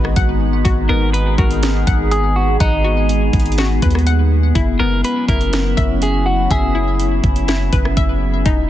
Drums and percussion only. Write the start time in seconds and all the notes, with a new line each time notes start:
0.05 cross-stick
0.16 kick, closed hi-hat
0.65 kick, closed hi-hat
1.14 closed hi-hat
1.38 kick, closed hi-hat
1.51 closed hi-hat
1.63 snare, closed hi-hat
1.87 kick, closed hi-hat
2.11 closed hi-hat
2.60 kick, closed hi-hat
3.09 closed hi-hat
3.33 kick, closed hi-hat
3.40 closed hi-hat
3.46 closed hi-hat
3.52 closed hi-hat
3.58 snare, closed hi-hat
3.82 kick, closed hi-hat
3.90 closed hi-hat
3.95 cross-stick, closed hi-hat
4.07 closed hi-hat
4.55 kick, closed hi-hat
5.04 closed hi-hat
5.29 kick, closed hi-hat
5.41 closed hi-hat
5.53 snare, closed hi-hat
5.77 kick, closed hi-hat
6.02 closed hi-hat
6.51 kick, closed hi-hat
7.00 closed hi-hat
7.24 kick, closed hi-hat
7.36 closed hi-hat
7.48 snare, closed hi-hat
7.73 kick, closed hi-hat
7.85 cross-stick
7.97 kick, closed hi-hat
8.46 kick, closed hi-hat